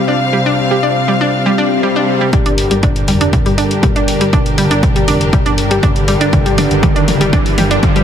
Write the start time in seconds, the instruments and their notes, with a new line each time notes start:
Already playing: analog synth pad C3 G3 C4, string section C3 G3 F4 C5 F5
0.08 synth pluck D4
0.33 analog synth pad C3 G3 C4, synth pluck G3
0.46 synth pluck D4
0.71 synth pluck G3
0.83 synth pluck D4
1.08 synth pluck G3
1.21 synth pluck D4
1.33 swell
1.46 synth pluck G3
1.58 synth pluck D4
1.71 analog synth pad C3 G3 C4
1.83 synth pluck G3
1.96 synth pluck D4
2.21 synth pluck G3
2.33 analog synth bass G1, analog synth pad G2 D3 G3, synth pluck G3, string section D4 G4 A#4, kick, closed hi-hat, mid tom, riser
2.46 synth pluck D4, closed hi-hat
2.58 open hi-hat
2.71 analog synth bass G1, synth pluck G3, closed hi-hat
2.83 synth pluck D4, kick, closed hi-hat, mid tom
2.96 closed hi-hat
3.08 analog synth bass F1, synth pluck G3, open hi-hat
3.21 synth pluck D4, closed hi-hat
3.33 kick, closed hi-hat, mid tom
3.46 analog synth bass G1, synth pluck G3, open hi-hat
3.58 analog synth pad G2 D3 G3, synth pluck D4, open hi-hat
3.71 closed hi-hat
3.83 analog synth bass G1, synth pluck G3, kick, closed hi-hat, mid tom
3.96 synth pluck D4, closed hi-hat
4.08 open hi-hat
4.21 synth pluck G3, closed hi-hat
4.33 analog synth bass G1, synth pluck D4, kick, closed hi-hat, mid tom
4.46 closed hi-hat
4.58 synth pluck G3, open hi-hat
4.71 analog synth bass G1, synth pluck D4, closed hi-hat
4.83 kick, closed hi-hat, mid tom
4.96 synth pluck G3, closed hi-hat
5.08 analog synth bass F1, synth pluck D4, open hi-hat
5.21 closed hi-hat
5.33 synth pluck G3, kick, closed hi-hat, mid tom
5.46 analog synth bass G1, synth pluck D4, closed hi-hat
5.58 open hi-hat
5.71 synth pluck G3, closed hi-hat
5.83 analog synth bass G1, analog synth pad G2 D3 G3, synth pluck D4, kick, closed hi-hat, mid tom
5.96 closed hi-hat
6.08 synth pluck G3, open hi-hat
6.21 synth pluck D4, closed hi-hat
6.33 analog synth bass G1, analog synth pad G2 D3 G3, kick, closed hi-hat, mid tom
6.46 synth pluck G3, closed hi-hat
6.58 synth pluck D4, open hi-hat, mid tom
6.71 analog synth bass G1, closed hi-hat
6.83 synth pluck G3, kick, closed hi-hat, mid tom
6.96 synth pluck D4, closed hi-hat
7.08 analog synth bass F1, open hi-hat, mid tom
7.21 synth pluck G3, closed hi-hat
7.33 synth pluck D4, kick, closed hi-hat, mid tom
7.46 analog synth bass G1, open hi-hat
7.58 analog synth pad G2 D3 G3, synth pluck G3, open hi-hat, mid tom
7.71 synth pluck D4, closed hi-hat
7.83 analog synth bass G1, kick, closed hi-hat, mid tom
7.96 synth pluck G3, closed hi-hat